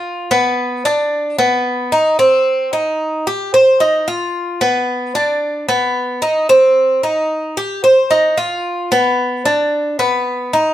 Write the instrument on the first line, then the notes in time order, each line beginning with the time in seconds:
cuban tres
Already playing: F4
0.31 B3
0.85 D4
1.39 B3
1.92 D#4
2.19 C4
2.73 D#4
3.27 G4
3.54 C5
3.80 D#4
4.08 F4
4.61 B3
5.15 D4
5.69 B3
6.22 D#4
6.49 C4
7.03 D#4
7.57 G4
7.84 C5
8.11 D#4
8.38 F4
8.92 B3
9.45 D4
9.99 B3
10.53 D#4